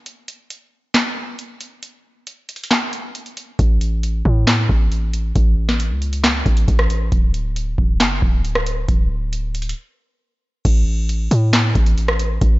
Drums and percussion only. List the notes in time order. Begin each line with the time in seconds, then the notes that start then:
0.06 closed hi-hat
0.28 closed hi-hat
0.50 closed hi-hat
0.94 snare, clap, closed hi-hat
1.39 closed hi-hat
1.61 closed hi-hat
1.83 closed hi-hat
2.27 closed hi-hat
2.49 closed hi-hat
2.56 closed hi-hat
2.64 closed hi-hat
2.71 snare, clap, closed hi-hat
2.93 closed hi-hat
3.15 closed hi-hat
3.26 closed hi-hat
3.37 closed hi-hat
3.59 kick, closed hi-hat
3.81 closed hi-hat
4.03 closed hi-hat
4.25 kick
4.47 snare, clap, closed hi-hat
4.69 kick
4.92 closed hi-hat
5.13 closed hi-hat
5.36 kick, closed hi-hat
5.69 snare
5.80 closed hi-hat
6.02 closed hi-hat
6.13 closed hi-hat
6.24 snare, clap, closed hi-hat
6.46 kick, closed hi-hat
6.57 closed hi-hat
6.68 kick, closed hi-hat
6.79 cross-stick
6.90 closed hi-hat
7.12 kick, closed hi-hat
7.34 closed hi-hat
7.56 closed hi-hat
7.78 kick
8.00 snare, clap, closed hi-hat
8.22 kick
8.45 closed hi-hat
8.55 cross-stick
8.66 closed hi-hat
8.89 kick, closed hi-hat
9.33 closed hi-hat
9.55 closed hi-hat
9.62 closed hi-hat
9.69 closed hi-hat
10.65 kick, closed hi-hat, crash
11.09 closed hi-hat
11.31 closed hi-hat
11.53 snare, clap, closed hi-hat
11.75 kick, closed hi-hat
11.86 closed hi-hat
11.98 closed hi-hat
12.08 cross-stick
12.19 closed hi-hat
12.41 kick, closed hi-hat